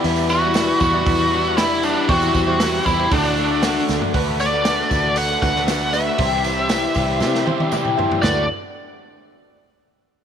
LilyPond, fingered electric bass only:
\new Staff \with { instrumentName = "Fingered electric bass" } { \clef bass \time 4/4 \key d \mixolydian \tempo 4 = 117 e,4. e,8 e,2 | e,8 e,4 e,8 d,4. d,16 r16 | d,4. d,4 d,4. | c,4. c,8 c8 r4. |
d,8 r2. r8 | }